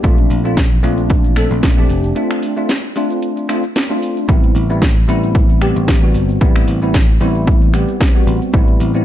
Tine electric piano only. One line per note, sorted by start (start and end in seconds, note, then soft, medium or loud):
0.03 0.41 A3 medium
0.03 0.41 C4 medium
0.03 0.42 D4 medium
0.03 0.42 F4 loud
0.44 0.55 A3 medium
0.44 0.56 C4 medium
0.44 0.56 D4 medium
0.44 0.56 F4 loud
0.83 1.34 A3 loud
0.83 1.34 C4 medium
0.83 1.34 D4 medium
0.83 1.34 F4 loud
1.36 1.74 A3 medium
1.36 1.74 C4 medium
1.36 1.75 D4 medium
1.36 1.75 A4 medium
1.77 2.13 A3 medium
1.77 2.13 C4 medium
1.77 2.14 D4 medium
1.77 2.14 G4 medium
2.15 2.54 A3 medium
2.15 2.54 C4 medium
2.15 2.54 D4 medium
2.15 2.54 F4 medium
2.57 2.68 A3 medium
2.57 2.68 C4 medium
2.57 2.68 D4 medium
2.57 2.68 F4 medium
2.96 3.46 A3 loud
2.96 3.46 C4 medium
2.96 3.46 D4 medium
2.96 3.47 F4 loud
3.48 3.62 A3 medium
3.48 3.62 C4 medium
3.48 3.62 D4 medium
3.48 3.63 F4 loud
3.89 4.25 A3 medium
3.89 4.26 C4 medium
3.89 4.26 D4 medium
3.89 4.26 F4 loud
4.28 4.66 G3 medium
4.28 4.66 B3 medium
4.28 4.66 C4 medium
4.28 4.66 E4 medium
4.70 4.81 G3 medium
4.70 4.81 B3 medium
4.70 4.81 C4 medium
4.70 4.81 E4 loud
5.08 5.58 G3 loud
5.08 5.59 B3 medium
5.08 5.59 C4 medium
5.08 5.59 E4 loud
5.61 5.99 G3 medium
5.61 5.99 B3 medium
5.61 5.99 C4 medium
5.61 5.99 G4 medium
6.02 6.38 G3 medium
6.02 6.38 B3 medium
6.02 6.38 C4 medium
6.02 6.39 F#4 medium
6.41 6.79 G3 medium
6.41 6.79 B3 medium
6.41 6.79 C4 medium
6.41 6.79 E4 medium
6.82 6.93 G3 medium
6.82 6.93 B3 medium
6.82 6.93 C4 medium
6.82 6.93 E4 loud
7.20 7.71 G3 loud
7.20 7.71 B3 medium
7.20 7.71 C4 medium
7.20 7.71 E4 loud
7.73 8.11 G3 medium
7.73 8.11 B3 medium
7.73 8.12 C4 medium
7.73 8.12 G4 medium
8.15 8.50 G3 medium
8.15 8.51 B3 medium
8.15 8.51 C4 medium
8.15 8.51 F#4 medium
8.53 8.91 G3 medium
8.53 8.91 B3 medium
8.53 8.91 C4 medium
8.53 8.91 E4 loud
8.94 9.05 G3 medium
8.94 9.05 B3 medium
8.94 9.05 C4 medium
8.94 9.05 E4 medium